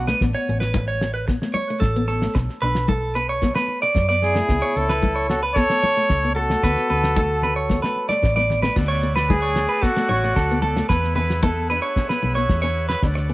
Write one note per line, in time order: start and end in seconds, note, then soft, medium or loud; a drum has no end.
0.00 0.12 B1 medium
0.07 0.18 A3 medium
0.07 0.20 B4 medium
0.07 snare medium
0.20 0.33 A1 medium
0.20 0.41 B3 medium
0.20 kick medium
0.20 snare medium
0.20 muted conga soft
0.35 0.60 C#5 medium
0.49 1.37 A1 medium
0.49 0.68 C#4 medium
0.60 0.86 B4 medium
0.60 snare medium
0.74 0.95 A3 medium
0.74 kick medium
0.74 high conga medium
0.88 1.13 C#5 medium
1.01 muted steel-string acoustic guitar stroke medium
1.01 snare medium
1.14 1.27 B4 medium
1.28 1.39 B3 medium
1.28 muted clean electric guitar stroke medium
1.28 kick medium
1.28 snare medium
1.28 muted conga soft
1.42 1.62 A3 medium
1.42 snare medium
1.54 1.80 C#5 medium
1.54 muted conga soft
1.54 high conga medium
1.70 1.89 A3 medium
1.80 2.26 A1 medium
1.80 2.06 A4 medium
1.80 kick medium
1.80 snare medium
1.80 high conga medium
1.96 2.15 B3 medium
2.08 2.33 A4 medium
2.08 muted conga soft
2.22 2.32 A3 medium
2.22 snare medium
2.35 2.46 B1 medium
2.35 2.55 C#4 medium
2.35 muted clean electric guitar stroke medium
2.35 kick medium
2.35 snare medium
2.35 muted conga soft
2.49 snare soft
2.62 3.51 B1 medium
2.62 2.82 D4 medium
2.62 2.87 B4 medium
2.75 snare medium
2.88 3.14 A4 medium
2.88 kick medium
2.88 high conga medium
3.15 3.35 C#4 medium
3.15 3.28 B4 medium
3.29 3.54 C#5 medium
3.42 3.53 B3 medium
3.42 kick medium
3.42 snare medium
3.42 muted conga soft
3.42 high conga medium
3.55 3.75 A3 medium
3.55 3.81 B4 medium
3.55 snare medium
3.68 muted conga soft
3.82 4.08 D5 medium
3.82 muted steel-string acoustic guitar stroke medium
3.95 4.40 F#2 medium
3.95 kick medium
3.95 snare medium
3.95 high conga medium
4.09 4.29 B3 medium
4.09 4.34 D5 medium
4.22 4.77 E4 medium
4.22 4.78 G#4 medium
4.22 snare soft
4.22 muted conga soft
4.35 4.46 A3 medium
4.35 snare medium
4.49 4.61 C#2 medium
4.49 4.70 B3 medium
4.49 kick medium
4.49 snare medium
4.49 muted conga soft
4.62 4.88 C#5 medium
4.76 5.65 C#2 medium
4.76 4.96 C#4 medium
4.76 5.29 E4 medium
4.76 5.29 A4 medium
4.89 5.15 B4 medium
4.89 snare medium
5.03 5.23 A3 medium
5.03 kick medium
5.03 high conga medium
5.16 5.41 C#5 medium
5.29 5.50 C#4 medium
5.29 5.42 F#4 medium
5.29 5.41 A4 medium
5.29 snare medium
5.43 5.55 B4 medium
5.55 5.66 B3 medium
5.55 6.32 A4 loud
5.55 5.81 A4 medium
5.55 6.32 C#5 loud
5.55 kick medium
5.55 snare medium
5.55 muted conga soft
5.70 5.90 A3 medium
5.70 snare medium
5.82 6.08 C#5 medium
5.82 muted conga soft
5.82 high conga medium
5.97 6.17 A3 medium
6.09 6.54 C#2 medium
6.09 kick medium
6.09 snare medium
6.09 high conga medium
6.24 6.44 B3 medium
6.35 8.19 F#4 medium
6.35 8.19 A4 medium
6.35 6.62 A4 medium
6.35 muted conga soft
6.50 6.60 A3 medium
6.50 snare medium
6.63 6.75 D2 medium
6.63 6.84 B3 medium
6.63 6.89 B4 medium
6.63 kick medium
6.63 snare medium
6.63 muted conga soft
6.77 snare soft
6.90 7.79 D2 medium
6.90 7.10 C#4 medium
6.90 7.15 B4 medium
7.04 snare medium
7.16 7.37 A3 medium
7.16 7.42 A4 medium
7.16 kick medium
7.16 high conga medium
7.16 low conga medium
7.42 7.64 C#4 medium
7.42 7.56 B4 medium
7.42 low conga medium
7.56 7.82 C#5 medium
7.70 7.81 B3 medium
7.70 kick medium
7.70 snare medium
7.70 muted conga soft
7.70 high conga medium
7.82 8.04 A3 medium
7.82 8.08 B4 medium
7.82 snare medium
7.96 muted conga soft
8.09 8.30 A3 medium
8.09 8.35 D5 medium
8.09 snare soft
8.09 high conga medium
8.22 8.68 A1 medium
8.22 kick medium
8.22 snare medium
8.22 high conga medium
8.36 8.57 B3 medium
8.36 8.62 D5 medium
8.36 high conga medium
8.50 snare soft
8.50 low conga medium
8.62 8.74 A3 medium
8.62 8.76 B4 medium
8.62 snare medium
8.62 low conga medium
8.75 9.65 D2 loud
8.75 10.87 A3 medium
8.75 8.96 B3 medium
8.75 10.87 D5 soft
8.75 10.87 F#5 medium
8.75 kick medium
8.75 snare medium
8.75 crash medium
8.75 muted conga soft
8.88 9.15 C#5 medium
9.03 9.23 C#4 medium
9.16 9.42 B4 medium
9.16 snare medium
9.30 9.50 A3 medium
9.30 9.84 G#4 medium
9.30 kick medium
9.30 muted conga soft
9.30 high conga loud
9.42 9.68 C#5 medium
9.56 9.76 C#4 medium
9.56 snare medium
9.69 9.82 B4 medium
9.82 9.93 B3 medium
9.82 10.63 F#4 medium
9.82 10.08 A4 medium
9.82 kick medium
9.82 snare medium
9.82 muted conga soft
9.96 10.16 A3 medium
9.96 snare medium
10.09 10.32 A1 medium
10.09 10.35 C#5 medium
10.09 muted conga soft
10.09 high conga medium
10.23 10.43 A3 medium
10.23 snare soft
10.36 10.81 D2 medium
10.36 10.61 A4 medium
10.36 kick medium
10.36 snare medium
10.51 10.70 B3 medium
10.62 10.88 A4 medium
10.62 high conga medium
10.76 10.87 A3 medium
10.76 snare medium
10.89 11.78 E2 loud
10.89 11.10 B3 medium
10.89 13.00 G#4 medium
10.89 11.15 B4 medium
10.89 13.00 E5 medium
10.89 13.34 F#5 medium
10.89 kick medium
10.89 snare medium
10.89 muted conga soft
11.04 snare soft
11.15 11.37 C#4 medium
11.15 11.41 B4 medium
11.15 low conga medium
11.30 snare medium
11.43 11.63 B3 medium
11.43 11.68 A4 medium
11.43 kick medium
11.43 muted conga soft
11.43 high conga loud
11.70 11.90 D4 medium
11.70 11.82 B4 medium
11.82 12.08 C#5 medium
11.96 12.07 C#4 medium
11.96 kick medium
11.96 snare medium
11.96 muted conga soft
12.09 12.30 B3 medium
12.09 12.35 B4 medium
12.09 snare medium
12.23 12.45 B1 medium
12.23 muted conga soft
12.23 high conga medium
12.35 12.56 B3 medium
12.35 12.61 C#5 medium
12.49 12.94 E2 medium
12.49 kick loud
12.49 snare medium
12.49 high conga medium
12.62 12.83 C#4 medium
12.62 12.88 C#5 medium
12.89 13.01 B4 medium
12.89 snare medium
13.02 13.34 D2 loud
13.02 13.34 A3 soft
13.02 13.23 D4 medium
13.02 13.34 D5 soft
13.02 kick medium
13.02 snare medium
13.02 muted conga soft
13.15 muted clean electric guitar stroke medium
13.15 snare soft
13.30 13.34 C#4 medium